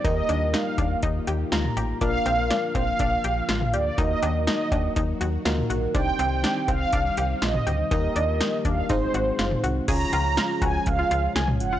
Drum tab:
CC |----------------|----------------|----------------|----------------|
HH |x-x-x-x-x-x-x-x-|x-x-x-x-x-x-x-x-|x-x-x-x-x-x-x-x-|x-x-x-x-x-x-x-x-|
CB |----------------|--x---x---------|--x---x---------|--x---x---------|
SD |----o-------o---|----o-------o---|----o-------o---|----o-------o---|
T2 |-------------o--|-------------o--|-------------o--|-------------o--|
BD |o-----o-o-------|o-----o-o-------|o-----o-o-------|o-----o-o-------|

CC |----------------|x---------------|
HH |x-x-x-x-x-x-x-x-|x-x-x-x-x-x-x-x-|
CB |----------------|--x---x---------|
SD |----o-------o---|----o-------o---|
T2 |-------------o--|-------------o--|
BD |o-----o-o-------|o-----o-o-------|